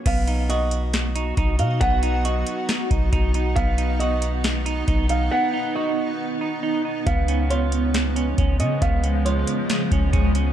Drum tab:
CC |x-------|--------|--------|--------|
HH |xxxxxxxx|xxxxxxxx|xxxxxxxx|--------|
SD |----o---|----o---|----o---|--------|
BD |o-----o-|o----oo-|o-----o-|--------|

CC |--------|--------|
HH |xxxxxxxx|xxxxxxxx|
SD |----o---|----o---|
BD |o-----o-|o----oo-|